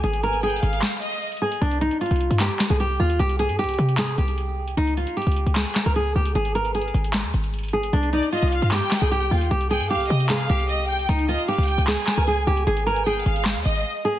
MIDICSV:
0, 0, Header, 1, 5, 480
1, 0, Start_track
1, 0, Key_signature, -3, "minor"
1, 0, Tempo, 394737
1, 44, Time_signature, 4, 2, 24, 8
1, 17256, End_track
2, 0, Start_track
2, 0, Title_t, "Violin section"
2, 0, Program_c, 0, 48
2, 283, Note_on_c, 0, 80, 81
2, 512, Note_off_c, 0, 80, 0
2, 526, Note_on_c, 0, 79, 78
2, 753, Note_off_c, 0, 79, 0
2, 765, Note_on_c, 0, 77, 92
2, 1216, Note_off_c, 0, 77, 0
2, 1240, Note_on_c, 0, 75, 88
2, 1470, Note_off_c, 0, 75, 0
2, 9891, Note_on_c, 0, 74, 87
2, 10116, Note_off_c, 0, 74, 0
2, 10125, Note_on_c, 0, 75, 77
2, 10353, Note_off_c, 0, 75, 0
2, 10359, Note_on_c, 0, 77, 92
2, 10589, Note_off_c, 0, 77, 0
2, 10610, Note_on_c, 0, 79, 93
2, 11518, Note_off_c, 0, 79, 0
2, 11805, Note_on_c, 0, 79, 90
2, 12033, Note_off_c, 0, 79, 0
2, 12045, Note_on_c, 0, 77, 87
2, 12272, Note_off_c, 0, 77, 0
2, 12281, Note_on_c, 0, 75, 83
2, 12510, Note_off_c, 0, 75, 0
2, 12526, Note_on_c, 0, 77, 96
2, 12976, Note_off_c, 0, 77, 0
2, 13004, Note_on_c, 0, 75, 87
2, 13232, Note_off_c, 0, 75, 0
2, 13241, Note_on_c, 0, 79, 87
2, 13470, Note_off_c, 0, 79, 0
2, 13723, Note_on_c, 0, 75, 80
2, 13952, Note_off_c, 0, 75, 0
2, 13967, Note_on_c, 0, 77, 77
2, 14194, Note_off_c, 0, 77, 0
2, 14204, Note_on_c, 0, 79, 88
2, 14432, Note_off_c, 0, 79, 0
2, 14449, Note_on_c, 0, 80, 99
2, 15358, Note_off_c, 0, 80, 0
2, 15644, Note_on_c, 0, 80, 84
2, 15872, Note_off_c, 0, 80, 0
2, 15885, Note_on_c, 0, 79, 77
2, 16113, Note_off_c, 0, 79, 0
2, 16124, Note_on_c, 0, 77, 94
2, 16576, Note_off_c, 0, 77, 0
2, 16600, Note_on_c, 0, 75, 91
2, 16830, Note_off_c, 0, 75, 0
2, 17256, End_track
3, 0, Start_track
3, 0, Title_t, "Nylon-string guitar"
3, 0, Program_c, 1, 24
3, 43, Note_on_c, 1, 68, 105
3, 271, Note_off_c, 1, 68, 0
3, 285, Note_on_c, 1, 70, 92
3, 512, Note_off_c, 1, 70, 0
3, 524, Note_on_c, 1, 68, 84
3, 1676, Note_off_c, 1, 68, 0
3, 1724, Note_on_c, 1, 68, 80
3, 1951, Note_off_c, 1, 68, 0
3, 1963, Note_on_c, 1, 62, 107
3, 2191, Note_off_c, 1, 62, 0
3, 2204, Note_on_c, 1, 63, 86
3, 2431, Note_off_c, 1, 63, 0
3, 2445, Note_on_c, 1, 65, 76
3, 2896, Note_off_c, 1, 65, 0
3, 2925, Note_on_c, 1, 67, 87
3, 3263, Note_off_c, 1, 67, 0
3, 3285, Note_on_c, 1, 68, 74
3, 3399, Note_off_c, 1, 68, 0
3, 3405, Note_on_c, 1, 67, 86
3, 3632, Note_off_c, 1, 67, 0
3, 3644, Note_on_c, 1, 65, 81
3, 3872, Note_off_c, 1, 65, 0
3, 3885, Note_on_c, 1, 67, 99
3, 4112, Note_off_c, 1, 67, 0
3, 4126, Note_on_c, 1, 68, 100
3, 4352, Note_off_c, 1, 68, 0
3, 4364, Note_on_c, 1, 67, 87
3, 4815, Note_off_c, 1, 67, 0
3, 4847, Note_on_c, 1, 68, 94
3, 5073, Note_off_c, 1, 68, 0
3, 5086, Note_on_c, 1, 67, 89
3, 5762, Note_off_c, 1, 67, 0
3, 5805, Note_on_c, 1, 63, 110
3, 6032, Note_off_c, 1, 63, 0
3, 6045, Note_on_c, 1, 65, 82
3, 6272, Note_off_c, 1, 65, 0
3, 6284, Note_on_c, 1, 67, 72
3, 6735, Note_off_c, 1, 67, 0
3, 6766, Note_on_c, 1, 68, 80
3, 7104, Note_off_c, 1, 68, 0
3, 7126, Note_on_c, 1, 70, 82
3, 7239, Note_off_c, 1, 70, 0
3, 7247, Note_on_c, 1, 68, 82
3, 7473, Note_off_c, 1, 68, 0
3, 7486, Note_on_c, 1, 67, 86
3, 7713, Note_off_c, 1, 67, 0
3, 7725, Note_on_c, 1, 68, 103
3, 7952, Note_off_c, 1, 68, 0
3, 7966, Note_on_c, 1, 70, 94
3, 8193, Note_off_c, 1, 70, 0
3, 8206, Note_on_c, 1, 68, 83
3, 9356, Note_off_c, 1, 68, 0
3, 9403, Note_on_c, 1, 68, 81
3, 9631, Note_off_c, 1, 68, 0
3, 9644, Note_on_c, 1, 62, 109
3, 9872, Note_off_c, 1, 62, 0
3, 9884, Note_on_c, 1, 63, 83
3, 10112, Note_off_c, 1, 63, 0
3, 10123, Note_on_c, 1, 65, 77
3, 10575, Note_off_c, 1, 65, 0
3, 10604, Note_on_c, 1, 67, 85
3, 10943, Note_off_c, 1, 67, 0
3, 10965, Note_on_c, 1, 68, 71
3, 11078, Note_off_c, 1, 68, 0
3, 11083, Note_on_c, 1, 67, 86
3, 11311, Note_off_c, 1, 67, 0
3, 11324, Note_on_c, 1, 65, 84
3, 11552, Note_off_c, 1, 65, 0
3, 11564, Note_on_c, 1, 67, 100
3, 11792, Note_off_c, 1, 67, 0
3, 11803, Note_on_c, 1, 68, 100
3, 12031, Note_off_c, 1, 68, 0
3, 12043, Note_on_c, 1, 67, 87
3, 12495, Note_off_c, 1, 67, 0
3, 12525, Note_on_c, 1, 68, 93
3, 12752, Note_off_c, 1, 68, 0
3, 12763, Note_on_c, 1, 67, 89
3, 13440, Note_off_c, 1, 67, 0
3, 13484, Note_on_c, 1, 63, 110
3, 13712, Note_off_c, 1, 63, 0
3, 13724, Note_on_c, 1, 65, 83
3, 13951, Note_off_c, 1, 65, 0
3, 13964, Note_on_c, 1, 67, 76
3, 14415, Note_off_c, 1, 67, 0
3, 14446, Note_on_c, 1, 68, 80
3, 14784, Note_off_c, 1, 68, 0
3, 14806, Note_on_c, 1, 70, 79
3, 14919, Note_off_c, 1, 70, 0
3, 14926, Note_on_c, 1, 68, 79
3, 15153, Note_off_c, 1, 68, 0
3, 15165, Note_on_c, 1, 67, 86
3, 15392, Note_off_c, 1, 67, 0
3, 15405, Note_on_c, 1, 68, 102
3, 15632, Note_off_c, 1, 68, 0
3, 15645, Note_on_c, 1, 70, 94
3, 15872, Note_off_c, 1, 70, 0
3, 15886, Note_on_c, 1, 68, 85
3, 17037, Note_off_c, 1, 68, 0
3, 17083, Note_on_c, 1, 68, 79
3, 17256, Note_off_c, 1, 68, 0
3, 17256, End_track
4, 0, Start_track
4, 0, Title_t, "808-style bass"
4, 0, Program_c, 2, 38
4, 43, Note_on_c, 2, 32, 116
4, 735, Note_off_c, 2, 32, 0
4, 763, Note_on_c, 2, 32, 109
4, 1004, Note_off_c, 2, 32, 0
4, 1965, Note_on_c, 2, 36, 113
4, 2310, Note_off_c, 2, 36, 0
4, 2564, Note_on_c, 2, 36, 99
4, 2795, Note_off_c, 2, 36, 0
4, 2803, Note_on_c, 2, 43, 103
4, 3034, Note_off_c, 2, 43, 0
4, 3284, Note_on_c, 2, 36, 107
4, 3630, Note_off_c, 2, 36, 0
4, 3644, Note_on_c, 2, 39, 106
4, 3875, Note_off_c, 2, 39, 0
4, 3884, Note_on_c, 2, 36, 109
4, 4243, Note_on_c, 2, 43, 102
4, 4262, Note_off_c, 2, 36, 0
4, 4423, Note_on_c, 2, 36, 99
4, 4441, Note_off_c, 2, 43, 0
4, 4595, Note_off_c, 2, 36, 0
4, 4603, Note_on_c, 2, 48, 108
4, 5064, Note_off_c, 2, 48, 0
4, 5083, Note_on_c, 2, 36, 104
4, 5775, Note_off_c, 2, 36, 0
4, 5803, Note_on_c, 2, 37, 111
4, 6150, Note_off_c, 2, 37, 0
4, 6404, Note_on_c, 2, 37, 102
4, 6634, Note_off_c, 2, 37, 0
4, 6644, Note_on_c, 2, 37, 98
4, 6875, Note_off_c, 2, 37, 0
4, 7125, Note_on_c, 2, 37, 104
4, 7470, Note_off_c, 2, 37, 0
4, 7485, Note_on_c, 2, 37, 104
4, 7715, Note_off_c, 2, 37, 0
4, 7723, Note_on_c, 2, 32, 117
4, 8415, Note_off_c, 2, 32, 0
4, 8443, Note_on_c, 2, 32, 111
4, 8803, Note_on_c, 2, 39, 99
4, 8822, Note_off_c, 2, 32, 0
4, 8918, Note_off_c, 2, 39, 0
4, 8924, Note_on_c, 2, 32, 106
4, 9616, Note_off_c, 2, 32, 0
4, 9644, Note_on_c, 2, 36, 116
4, 9990, Note_off_c, 2, 36, 0
4, 10244, Note_on_c, 2, 36, 98
4, 10475, Note_off_c, 2, 36, 0
4, 10484, Note_on_c, 2, 43, 103
4, 10715, Note_off_c, 2, 43, 0
4, 10963, Note_on_c, 2, 36, 106
4, 11309, Note_off_c, 2, 36, 0
4, 11324, Note_on_c, 2, 39, 108
4, 11554, Note_off_c, 2, 39, 0
4, 11563, Note_on_c, 2, 36, 109
4, 11924, Note_on_c, 2, 43, 105
4, 11942, Note_off_c, 2, 36, 0
4, 12103, Note_on_c, 2, 36, 100
4, 12121, Note_off_c, 2, 43, 0
4, 12275, Note_off_c, 2, 36, 0
4, 12284, Note_on_c, 2, 48, 106
4, 12745, Note_off_c, 2, 48, 0
4, 12764, Note_on_c, 2, 36, 112
4, 13455, Note_off_c, 2, 36, 0
4, 13484, Note_on_c, 2, 37, 114
4, 13830, Note_off_c, 2, 37, 0
4, 14084, Note_on_c, 2, 37, 102
4, 14315, Note_off_c, 2, 37, 0
4, 14325, Note_on_c, 2, 37, 101
4, 14555, Note_off_c, 2, 37, 0
4, 14804, Note_on_c, 2, 37, 108
4, 15150, Note_off_c, 2, 37, 0
4, 15164, Note_on_c, 2, 37, 102
4, 15395, Note_off_c, 2, 37, 0
4, 15404, Note_on_c, 2, 32, 112
4, 16095, Note_off_c, 2, 32, 0
4, 16124, Note_on_c, 2, 32, 114
4, 16485, Note_on_c, 2, 39, 98
4, 16503, Note_off_c, 2, 32, 0
4, 16599, Note_off_c, 2, 39, 0
4, 16604, Note_on_c, 2, 32, 105
4, 16835, Note_off_c, 2, 32, 0
4, 17256, End_track
5, 0, Start_track
5, 0, Title_t, "Drums"
5, 44, Note_on_c, 9, 42, 80
5, 164, Note_off_c, 9, 42, 0
5, 164, Note_on_c, 9, 42, 64
5, 285, Note_off_c, 9, 42, 0
5, 285, Note_on_c, 9, 42, 77
5, 404, Note_off_c, 9, 42, 0
5, 404, Note_on_c, 9, 42, 65
5, 524, Note_off_c, 9, 42, 0
5, 524, Note_on_c, 9, 42, 61
5, 604, Note_off_c, 9, 42, 0
5, 604, Note_on_c, 9, 42, 59
5, 685, Note_off_c, 9, 42, 0
5, 685, Note_on_c, 9, 42, 61
5, 763, Note_off_c, 9, 42, 0
5, 763, Note_on_c, 9, 42, 85
5, 885, Note_off_c, 9, 42, 0
5, 886, Note_on_c, 9, 42, 66
5, 998, Note_on_c, 9, 39, 98
5, 1004, Note_on_c, 9, 38, 117
5, 1005, Note_off_c, 9, 42, 0
5, 1005, Note_on_c, 9, 42, 96
5, 1120, Note_off_c, 9, 39, 0
5, 1123, Note_off_c, 9, 42, 0
5, 1123, Note_on_c, 9, 42, 61
5, 1126, Note_off_c, 9, 38, 0
5, 1242, Note_off_c, 9, 42, 0
5, 1242, Note_on_c, 9, 42, 73
5, 1363, Note_off_c, 9, 42, 0
5, 1365, Note_on_c, 9, 42, 52
5, 1485, Note_off_c, 9, 42, 0
5, 1485, Note_on_c, 9, 42, 45
5, 1544, Note_off_c, 9, 42, 0
5, 1544, Note_on_c, 9, 42, 55
5, 1604, Note_off_c, 9, 42, 0
5, 1604, Note_on_c, 9, 42, 70
5, 1664, Note_off_c, 9, 42, 0
5, 1664, Note_on_c, 9, 42, 81
5, 1786, Note_off_c, 9, 42, 0
5, 1846, Note_on_c, 9, 42, 77
5, 1964, Note_off_c, 9, 42, 0
5, 1964, Note_on_c, 9, 42, 81
5, 2085, Note_off_c, 9, 42, 0
5, 2085, Note_on_c, 9, 42, 63
5, 2205, Note_off_c, 9, 42, 0
5, 2205, Note_on_c, 9, 42, 79
5, 2324, Note_off_c, 9, 42, 0
5, 2324, Note_on_c, 9, 42, 65
5, 2444, Note_off_c, 9, 42, 0
5, 2444, Note_on_c, 9, 42, 62
5, 2503, Note_off_c, 9, 42, 0
5, 2503, Note_on_c, 9, 42, 61
5, 2564, Note_off_c, 9, 42, 0
5, 2564, Note_on_c, 9, 42, 63
5, 2624, Note_off_c, 9, 42, 0
5, 2624, Note_on_c, 9, 42, 63
5, 2682, Note_off_c, 9, 42, 0
5, 2682, Note_on_c, 9, 42, 83
5, 2804, Note_off_c, 9, 42, 0
5, 2805, Note_on_c, 9, 42, 69
5, 2918, Note_on_c, 9, 39, 97
5, 2924, Note_off_c, 9, 42, 0
5, 2924, Note_on_c, 9, 38, 120
5, 2924, Note_on_c, 9, 42, 97
5, 3040, Note_off_c, 9, 39, 0
5, 3043, Note_off_c, 9, 42, 0
5, 3043, Note_on_c, 9, 42, 60
5, 3046, Note_off_c, 9, 38, 0
5, 3158, Note_on_c, 9, 39, 69
5, 3162, Note_off_c, 9, 42, 0
5, 3162, Note_on_c, 9, 42, 74
5, 3164, Note_on_c, 9, 38, 88
5, 3280, Note_off_c, 9, 39, 0
5, 3283, Note_off_c, 9, 42, 0
5, 3285, Note_on_c, 9, 42, 53
5, 3286, Note_off_c, 9, 38, 0
5, 3403, Note_off_c, 9, 42, 0
5, 3403, Note_on_c, 9, 42, 74
5, 3525, Note_off_c, 9, 42, 0
5, 3766, Note_on_c, 9, 42, 81
5, 3884, Note_off_c, 9, 42, 0
5, 3884, Note_on_c, 9, 42, 82
5, 4005, Note_off_c, 9, 42, 0
5, 4005, Note_on_c, 9, 42, 64
5, 4125, Note_off_c, 9, 42, 0
5, 4125, Note_on_c, 9, 42, 80
5, 4244, Note_off_c, 9, 42, 0
5, 4244, Note_on_c, 9, 42, 67
5, 4364, Note_off_c, 9, 42, 0
5, 4364, Note_on_c, 9, 42, 63
5, 4424, Note_off_c, 9, 42, 0
5, 4424, Note_on_c, 9, 42, 61
5, 4484, Note_off_c, 9, 42, 0
5, 4484, Note_on_c, 9, 42, 63
5, 4544, Note_off_c, 9, 42, 0
5, 4544, Note_on_c, 9, 42, 64
5, 4602, Note_off_c, 9, 42, 0
5, 4602, Note_on_c, 9, 42, 82
5, 4724, Note_off_c, 9, 42, 0
5, 4725, Note_on_c, 9, 42, 70
5, 4838, Note_on_c, 9, 39, 96
5, 4844, Note_off_c, 9, 42, 0
5, 4844, Note_on_c, 9, 38, 124
5, 4844, Note_on_c, 9, 42, 92
5, 4959, Note_off_c, 9, 39, 0
5, 4963, Note_off_c, 9, 42, 0
5, 4963, Note_on_c, 9, 42, 63
5, 4965, Note_off_c, 9, 38, 0
5, 5082, Note_off_c, 9, 42, 0
5, 5082, Note_on_c, 9, 42, 74
5, 5203, Note_off_c, 9, 42, 0
5, 5205, Note_on_c, 9, 42, 53
5, 5323, Note_off_c, 9, 42, 0
5, 5323, Note_on_c, 9, 42, 75
5, 5444, Note_off_c, 9, 42, 0
5, 5686, Note_on_c, 9, 42, 80
5, 5805, Note_off_c, 9, 42, 0
5, 5805, Note_on_c, 9, 42, 81
5, 5925, Note_off_c, 9, 42, 0
5, 5925, Note_on_c, 9, 42, 65
5, 6046, Note_off_c, 9, 42, 0
5, 6046, Note_on_c, 9, 42, 79
5, 6165, Note_off_c, 9, 42, 0
5, 6165, Note_on_c, 9, 42, 67
5, 6285, Note_off_c, 9, 42, 0
5, 6285, Note_on_c, 9, 42, 61
5, 6345, Note_off_c, 9, 42, 0
5, 6345, Note_on_c, 9, 42, 61
5, 6405, Note_off_c, 9, 42, 0
5, 6405, Note_on_c, 9, 42, 62
5, 6465, Note_off_c, 9, 42, 0
5, 6465, Note_on_c, 9, 42, 62
5, 6523, Note_off_c, 9, 42, 0
5, 6523, Note_on_c, 9, 42, 85
5, 6645, Note_off_c, 9, 42, 0
5, 6646, Note_on_c, 9, 42, 67
5, 6758, Note_on_c, 9, 39, 96
5, 6764, Note_off_c, 9, 42, 0
5, 6764, Note_on_c, 9, 38, 120
5, 6764, Note_on_c, 9, 42, 94
5, 6880, Note_off_c, 9, 39, 0
5, 6883, Note_off_c, 9, 42, 0
5, 6883, Note_on_c, 9, 42, 63
5, 6886, Note_off_c, 9, 38, 0
5, 6998, Note_on_c, 9, 39, 71
5, 7001, Note_off_c, 9, 42, 0
5, 7001, Note_on_c, 9, 42, 74
5, 7004, Note_on_c, 9, 38, 92
5, 7120, Note_off_c, 9, 39, 0
5, 7123, Note_off_c, 9, 42, 0
5, 7124, Note_on_c, 9, 42, 53
5, 7126, Note_off_c, 9, 38, 0
5, 7242, Note_off_c, 9, 42, 0
5, 7242, Note_on_c, 9, 42, 76
5, 7364, Note_off_c, 9, 42, 0
5, 7606, Note_on_c, 9, 42, 78
5, 7724, Note_off_c, 9, 42, 0
5, 7724, Note_on_c, 9, 42, 84
5, 7845, Note_off_c, 9, 42, 0
5, 7845, Note_on_c, 9, 42, 63
5, 7966, Note_off_c, 9, 42, 0
5, 7966, Note_on_c, 9, 42, 76
5, 8084, Note_off_c, 9, 42, 0
5, 8084, Note_on_c, 9, 42, 67
5, 8205, Note_off_c, 9, 42, 0
5, 8205, Note_on_c, 9, 42, 62
5, 8284, Note_off_c, 9, 42, 0
5, 8284, Note_on_c, 9, 42, 61
5, 8364, Note_off_c, 9, 42, 0
5, 8364, Note_on_c, 9, 42, 63
5, 8443, Note_off_c, 9, 42, 0
5, 8443, Note_on_c, 9, 42, 83
5, 8565, Note_off_c, 9, 42, 0
5, 8566, Note_on_c, 9, 42, 70
5, 8678, Note_on_c, 9, 39, 97
5, 8684, Note_off_c, 9, 42, 0
5, 8684, Note_on_c, 9, 38, 117
5, 8684, Note_on_c, 9, 42, 97
5, 8800, Note_off_c, 9, 39, 0
5, 8803, Note_off_c, 9, 42, 0
5, 8803, Note_on_c, 9, 42, 63
5, 8806, Note_off_c, 9, 38, 0
5, 8922, Note_off_c, 9, 42, 0
5, 8922, Note_on_c, 9, 42, 75
5, 9044, Note_off_c, 9, 42, 0
5, 9044, Note_on_c, 9, 42, 53
5, 9165, Note_off_c, 9, 42, 0
5, 9165, Note_on_c, 9, 42, 46
5, 9224, Note_off_c, 9, 42, 0
5, 9224, Note_on_c, 9, 42, 57
5, 9284, Note_off_c, 9, 42, 0
5, 9284, Note_on_c, 9, 42, 68
5, 9344, Note_off_c, 9, 42, 0
5, 9344, Note_on_c, 9, 42, 82
5, 9466, Note_off_c, 9, 42, 0
5, 9526, Note_on_c, 9, 42, 81
5, 9644, Note_off_c, 9, 42, 0
5, 9644, Note_on_c, 9, 42, 80
5, 9764, Note_off_c, 9, 42, 0
5, 9764, Note_on_c, 9, 42, 64
5, 9885, Note_off_c, 9, 42, 0
5, 9885, Note_on_c, 9, 42, 79
5, 10004, Note_off_c, 9, 42, 0
5, 10004, Note_on_c, 9, 42, 66
5, 10124, Note_off_c, 9, 42, 0
5, 10124, Note_on_c, 9, 42, 60
5, 10184, Note_off_c, 9, 42, 0
5, 10184, Note_on_c, 9, 42, 61
5, 10244, Note_off_c, 9, 42, 0
5, 10244, Note_on_c, 9, 42, 61
5, 10304, Note_off_c, 9, 42, 0
5, 10304, Note_on_c, 9, 42, 63
5, 10363, Note_off_c, 9, 42, 0
5, 10363, Note_on_c, 9, 42, 86
5, 10485, Note_off_c, 9, 42, 0
5, 10485, Note_on_c, 9, 42, 68
5, 10598, Note_on_c, 9, 39, 97
5, 10604, Note_off_c, 9, 42, 0
5, 10604, Note_on_c, 9, 38, 121
5, 10604, Note_on_c, 9, 42, 97
5, 10719, Note_off_c, 9, 39, 0
5, 10723, Note_off_c, 9, 42, 0
5, 10723, Note_on_c, 9, 42, 60
5, 10725, Note_off_c, 9, 38, 0
5, 10838, Note_on_c, 9, 39, 72
5, 10842, Note_off_c, 9, 42, 0
5, 10842, Note_on_c, 9, 42, 75
5, 10844, Note_on_c, 9, 38, 90
5, 10960, Note_off_c, 9, 39, 0
5, 10963, Note_off_c, 9, 42, 0
5, 10965, Note_on_c, 9, 42, 54
5, 10966, Note_off_c, 9, 38, 0
5, 11082, Note_off_c, 9, 42, 0
5, 11082, Note_on_c, 9, 42, 73
5, 11204, Note_off_c, 9, 42, 0
5, 11445, Note_on_c, 9, 42, 80
5, 11564, Note_off_c, 9, 42, 0
5, 11564, Note_on_c, 9, 42, 79
5, 11684, Note_off_c, 9, 42, 0
5, 11684, Note_on_c, 9, 42, 62
5, 11805, Note_off_c, 9, 42, 0
5, 11805, Note_on_c, 9, 42, 77
5, 11924, Note_off_c, 9, 42, 0
5, 11924, Note_on_c, 9, 42, 65
5, 12044, Note_off_c, 9, 42, 0
5, 12044, Note_on_c, 9, 42, 61
5, 12104, Note_off_c, 9, 42, 0
5, 12104, Note_on_c, 9, 42, 61
5, 12164, Note_off_c, 9, 42, 0
5, 12164, Note_on_c, 9, 42, 64
5, 12225, Note_off_c, 9, 42, 0
5, 12225, Note_on_c, 9, 42, 64
5, 12284, Note_off_c, 9, 42, 0
5, 12284, Note_on_c, 9, 42, 81
5, 12405, Note_off_c, 9, 42, 0
5, 12406, Note_on_c, 9, 42, 70
5, 12518, Note_on_c, 9, 39, 100
5, 12524, Note_on_c, 9, 38, 124
5, 12525, Note_off_c, 9, 42, 0
5, 12525, Note_on_c, 9, 42, 96
5, 12640, Note_off_c, 9, 39, 0
5, 12644, Note_off_c, 9, 42, 0
5, 12644, Note_on_c, 9, 42, 62
5, 12646, Note_off_c, 9, 38, 0
5, 12762, Note_off_c, 9, 42, 0
5, 12762, Note_on_c, 9, 42, 76
5, 12884, Note_off_c, 9, 42, 0
5, 12884, Note_on_c, 9, 42, 54
5, 13004, Note_off_c, 9, 42, 0
5, 13004, Note_on_c, 9, 42, 74
5, 13125, Note_off_c, 9, 42, 0
5, 13366, Note_on_c, 9, 42, 78
5, 13484, Note_off_c, 9, 42, 0
5, 13484, Note_on_c, 9, 42, 82
5, 13605, Note_off_c, 9, 42, 0
5, 13605, Note_on_c, 9, 42, 65
5, 13725, Note_off_c, 9, 42, 0
5, 13725, Note_on_c, 9, 42, 79
5, 13844, Note_off_c, 9, 42, 0
5, 13844, Note_on_c, 9, 42, 66
5, 13966, Note_off_c, 9, 42, 0
5, 13966, Note_on_c, 9, 42, 59
5, 14025, Note_off_c, 9, 42, 0
5, 14025, Note_on_c, 9, 42, 62
5, 14085, Note_off_c, 9, 42, 0
5, 14085, Note_on_c, 9, 42, 64
5, 14145, Note_off_c, 9, 42, 0
5, 14145, Note_on_c, 9, 42, 63
5, 14204, Note_off_c, 9, 42, 0
5, 14204, Note_on_c, 9, 42, 83
5, 14326, Note_off_c, 9, 42, 0
5, 14327, Note_on_c, 9, 42, 69
5, 14439, Note_on_c, 9, 39, 100
5, 14445, Note_on_c, 9, 38, 124
5, 14446, Note_off_c, 9, 42, 0
5, 14446, Note_on_c, 9, 42, 96
5, 14561, Note_off_c, 9, 39, 0
5, 14564, Note_off_c, 9, 42, 0
5, 14564, Note_on_c, 9, 42, 62
5, 14567, Note_off_c, 9, 38, 0
5, 14679, Note_on_c, 9, 39, 71
5, 14683, Note_off_c, 9, 42, 0
5, 14683, Note_on_c, 9, 42, 77
5, 14685, Note_on_c, 9, 38, 87
5, 14801, Note_off_c, 9, 39, 0
5, 14804, Note_off_c, 9, 42, 0
5, 14805, Note_on_c, 9, 42, 54
5, 14807, Note_off_c, 9, 38, 0
5, 14923, Note_off_c, 9, 42, 0
5, 14923, Note_on_c, 9, 42, 77
5, 15045, Note_off_c, 9, 42, 0
5, 15287, Note_on_c, 9, 42, 75
5, 15405, Note_off_c, 9, 42, 0
5, 15405, Note_on_c, 9, 42, 82
5, 15526, Note_off_c, 9, 42, 0
5, 15526, Note_on_c, 9, 42, 67
5, 15646, Note_off_c, 9, 42, 0
5, 15646, Note_on_c, 9, 42, 77
5, 15764, Note_off_c, 9, 42, 0
5, 15764, Note_on_c, 9, 42, 65
5, 15885, Note_off_c, 9, 42, 0
5, 15885, Note_on_c, 9, 42, 60
5, 15965, Note_off_c, 9, 42, 0
5, 15965, Note_on_c, 9, 42, 62
5, 16045, Note_off_c, 9, 42, 0
5, 16045, Note_on_c, 9, 42, 64
5, 16123, Note_off_c, 9, 42, 0
5, 16123, Note_on_c, 9, 42, 84
5, 16245, Note_off_c, 9, 42, 0
5, 16246, Note_on_c, 9, 42, 66
5, 16358, Note_on_c, 9, 39, 97
5, 16364, Note_off_c, 9, 42, 0
5, 16364, Note_on_c, 9, 38, 123
5, 16364, Note_on_c, 9, 42, 93
5, 16480, Note_off_c, 9, 39, 0
5, 16483, Note_off_c, 9, 42, 0
5, 16483, Note_on_c, 9, 42, 61
5, 16486, Note_off_c, 9, 38, 0
5, 16602, Note_off_c, 9, 42, 0
5, 16602, Note_on_c, 9, 42, 75
5, 16723, Note_off_c, 9, 42, 0
5, 16725, Note_on_c, 9, 42, 54
5, 16847, Note_off_c, 9, 42, 0
5, 17256, End_track
0, 0, End_of_file